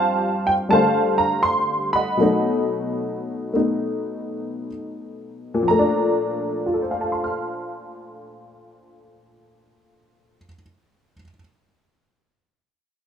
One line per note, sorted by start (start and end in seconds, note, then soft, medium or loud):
0.00 2.16 G2 medium
0.00 2.18 F3 soft
0.00 2.20 C4 soft
0.00 2.22 G4 medium
0.00 0.72 C5 medium
0.00 0.43 D5 medium
0.00 0.71 F5 medium
0.00 0.48 A5 loud
0.47 0.52 G5 medium
0.69 2.19 D3 soft
0.69 2.18 G3 soft
0.69 2.19 A3 soft
0.69 2.16 F5 medium
0.69 1.20 A5 medium
0.74 2.17 C5 medium
1.18 1.44 A#5 medium
1.43 1.89 C6 medium
1.93 4.68 D#5 medium
1.93 4.68 F#5 medium
1.93 4.67 B5 medium
2.17 5.65 B2 medium
2.17 5.66 F#3 soft
2.17 3.52 A3 soft
2.22 3.55 D#4 medium
3.54 5.66 A3 soft
3.54 5.67 B3 soft
3.54 5.68 D#4 soft
5.54 10.37 A#2 medium
5.62 10.45 F3 medium
5.68 10.54 A3 medium
5.68 10.47 A#5 medium
5.79 10.62 D4 medium
6.66 11.11 F4 soft
6.74 11.15 A4 soft
6.82 11.19 C5 soft
6.91 11.23 F5 soft
7.01 11.28 A5 soft
7.12 11.34 C6 soft
7.24 11.40 F6 soft